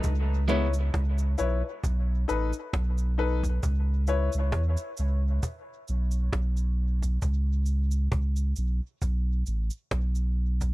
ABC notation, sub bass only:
X:1
M:4/4
L:1/16
Q:"Swing 16ths" 1/4=67
K:C#m
V:1 name="Sub bass" clef=bass
C,,4 C,,2 B,,, z B,,,2 A,,, z B,,,4 | C,,3 C,, E,, z C,,2 z2 B,,,2 B,,,4 | C,,4 C,,2 B,,, z B,,,2 A,,, z B,,,4 |]